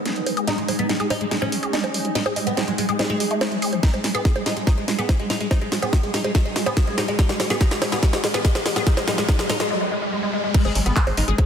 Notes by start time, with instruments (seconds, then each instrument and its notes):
Already playing: synth drone G#3 D#4, oud B3
0.06 synth arpeggio sound G#3, snare, closed hi-hat
0.16 synth arpeggio sound G#3, closed hi-hat
0.26 synth arpeggio sound G#3, open hi-hat, high bongo
0.37 synth arpeggio sound G#4, closed hi-hat
0.47 synth arpeggio sound G#3, oud D#4, snare, closed hi-hat
0.58 oud G#3, synth arpeggio sound A3, closed hi-hat
0.68 oud G#3, synth arpeggio sound G#3, open hi-hat, high bongo
0.79 synth arpeggio sound G#3, oud B3, closed hi-hat
0.89 oud G#3, synth arpeggio sound G#3, snare, closed hi-hat
1.00 oud G#3, synth arpeggio sound G#4, closed hi-hat
1.10 synth arpeggio sound G#3, oud D#4, open hi-hat, high bongo
1.21 oud G#3, synth arpeggio sound A3, closed hi-hat
1.31 oud G#3, synth arpeggio sound G#3, snare, closed hi-hat
1.42 synth arpeggio sound G#3, oud C#4, high bongo
1.52 synth arpeggio sound G#3, open hi-hat
1.63 synth arpeggio sound G#4, closed hi-hat
1.73 synth arpeggio sound G#3, snare, closed hi-hat
1.84 synth arpeggio sound A3, closed hi-hat, high bongo
1.94 synth arpeggio sound G#3, open hi-hat
2.05 synth arpeggio sound G#3, closed hi-hat
2.15 synth arpeggio sound G#3, oud D#4, snare, closed hi-hat
2.26 oud G#3, synth arpeggio sound G#4, closed hi-hat, high bongo
2.36 synth arpeggio sound G#3, oud G#3, open hi-hat
2.47 synth arpeggio sound A3, oud B3, closed hi-hat
2.57 synth arpeggio sound G#3, oud G#3, snare, closed hi-hat, high bongo
2.68 synth arpeggio sound G#3, oud G#3, closed hi-hat
2.78 oud G#3, synth arpeggio sound G#3, open hi-hat
2.89 oud G#3, synth arpeggio sound G#4, closed hi-hat
2.99 oud G#3, synth arpeggio sound G#3, snare, closed hi-hat, high bongo
3.10 oud G#3, synth arpeggio sound A3
3.20 synth arpeggio sound G#3, open hi-hat
3.31 synth arpeggio sound A3, closed hi-hat
3.41 synth arpeggio sound A3, snare, closed hi-hat, high bongo
3.52 synth arpeggio sound G#3, closed hi-hat
3.62 synth arpeggio sound G#4, open hi-hat
3.73 synth arpeggio sound F#3, closed hi-hat, high bongo
3.83 synth arpeggio sound G#3, oud D#4, synth drone G#4, kick, snare, closed hi-hat, riser
3.94 synth arpeggio sound G#3, oud G#3, closed hi-hat, high bongo
4.04 synth arpeggio sound G#3, oud G#3, snare, open hi-hat
4.15 oud B3, synth arpeggio sound G#4, closed hi-hat
4.25 oud G#3, synth arpeggio sound B3, kick, snare, closed hi-hat
4.36 oud G#3, synth arpeggio sound G#3, closed hi-hat, high bongo
4.46 synth arpeggio sound G#3, oud D#4, snare, open hi-hat
4.57 synth arpeggio sound G#3, oud G#3, closed hi-hat
4.67 synth arpeggio sound G#3, oud D#4, kick, snare, closed hi-hat, high bongo
4.78 synth arpeggio sound G#3, oud G#3
4.88 synth arpeggio sound G#3, oud G#3, snare, open hi-hat
4.98 oud B3, synth arpeggio sound G#4, closed hi-hat
5.09 oud G#3, synth arpeggio sound B3, kick, snare, closed hi-hat, high bongo
5.19 synth arpeggio sound G#3, oud G#3, closed hi-hat
5.30 synth arpeggio sound G#3, oud D#4, snare, open hi-hat
5.40 synth arpeggio sound G#3, oud G#3, closed hi-hat
5.51 synth arpeggio sound G#3, oud D#4, kick, snare, closed hi-hat, high bongo
5.61 synth arpeggio sound G#3, oud G#3, closed hi-hat
5.72 synth arpeggio sound G#3, oud G#3, snare, open hi-hat
5.82 oud B3, synth arpeggio sound G#4, closed hi-hat, high bongo
5.93 oud G#3, synth arpeggio sound B3, kick, snare, closed hi-hat
6.03 synth arpeggio sound G#3, oud G#3, closed hi-hat
6.14 synth arpeggio sound G#3, oud D#4, snare, open hi-hat
6.24 synth arpeggio sound G#3, oud G#3, closed hi-hat, high bongo
6.35 synth arpeggio sound G#3, oud D#4, kick, snare, closed hi-hat
6.45 synth arpeggio sound G#3, oud G#3
6.56 synth arpeggio sound G#3, oud G#3, snare, open hi-hat
6.66 oud B3, synth arpeggio sound G#4, closed hi-hat, high bongo
6.77 oud G#3, synth arpeggio sound B3, kick, snare, closed hi-hat
6.87 synth arpeggio sound G#3, oud G#3, closed hi-hat
6.98 synth arpeggio sound G#3, oud D#4, snare, open hi-hat, high bongo
7.08 synth arpeggio sound G#3, oud G#3, closed hi-hat
7.19 synth arpeggio sound G#3, oud D#4, kick, snare, closed hi-hat
7.29 synth arpeggio sound G#3, oud G#3, snare, closed hi-hat
7.40 synth arpeggio sound G#3, oud G#3, snare, open hi-hat, high bongo
7.50 oud B3, synth arpeggio sound G#4, snare, closed hi-hat
7.61 synth arpeggio sound G#3, oud D#4, kick, snare, closed hi-hat
7.71 synth arpeggio sound G#3, oud G#3, snare, closed hi-hat
7.82 synth arpeggio sound G#3, oud G#3, snare, open hi-hat, high bongo
7.92 oud B3, synth arpeggio sound G#4, snare, closed hi-hat
8.03 synth arpeggio sound G#3, oud D#4, kick, snare, closed hi-hat
8.13 synth arpeggio sound G#3, oud G#3, snare, high bongo
8.24 synth arpeggio sound G#3, oud G#3, snare, open hi-hat
8.34 oud B3, synth arpeggio sound G#4, snare, closed hi-hat
8.45 synth arpeggio sound G#3, oud D#4, kick, snare, closed hi-hat
8.55 synth arpeggio sound G#3, oud G#3, snare, closed hi-hat, high bongo
8.66 synth arpeggio sound G#3, oud G#3, snare, open hi-hat
8.76 oud B3, synth arpeggio sound G#4, snare, closed hi-hat
8.87 synth arpeggio sound G#3, oud D#4, kick, snare, closed hi-hat
8.97 synth arpeggio sound G#3, oud G#3, snare, closed hi-hat, high bongo
9.08 synth arpeggio sound G#3, oud D#4, snare, open hi-hat
9.18 synth arpeggio sound G#3, oud G#3, snare, closed hi-hat
9.29 synth arpeggio sound G#3, oud D#4, kick, snare, closed hi-hat, high bongo
9.39 synth arpeggio sound G#3, oud G#3, snare, closed hi-hat
9.50 synth arpeggio sound G#3, oud D#4, snare, open hi-hat
9.60 synth arpeggio sound G#3, oud G#3, snare, closed hi-hat
9.70 synth arpeggio sound G#3
9.81 synth arpeggio sound G#3
9.91 synth arpeggio sound G#3
10.02 synth arpeggio sound G#3
10.12 synth arpeggio sound G#3
10.23 synth arpeggio sound G#3
10.33 synth arpeggio sound G#3
10.44 synth arpeggio sound G#3
10.54 synth arpeggio sound G#3, synth drone G#3 D#4, oud D#4, kick, closed hi-hat, crash
10.65 analog synth bass G#1, oud G#3, synth arpeggio sound G#4, closed hi-hat, high bongo
10.75 analog synth bass G#1, synth arpeggio sound F#3, oud G#3, open hi-hat
10.86 analog synth bass G#1, oud B3, synth arpeggio sound G#4, closed hi-hat
10.96 oud G#3, synth arpeggio sound G#4, kick, clap, closed hi-hat
11.07 analog synth bass G#1, oud G#3, synth arpeggio sound A4, open hi-hat, high bongo
11.17 analog synth bass G#1, synth arpeggio sound G#3, oud D#4, open hi-hat
11.28 analog synth bass G#1, oud G#3, synth arpeggio sound G#4, closed hi-hat
11.38 synth arpeggio sound F#3, oud G#3, kick, closed hi-hat, high bongo